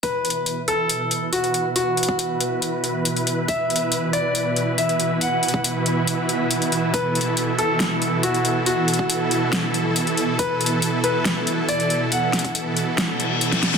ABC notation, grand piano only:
X:1
M:4/4
L:1/8
Q:1/4=139
K:Clyd
V:1 name="Grand piano"
B3 A3 F z | F8 | e3 d3 e z | f8 |
B3 A3 F z | F8 | B3 B3 d z | f8 |]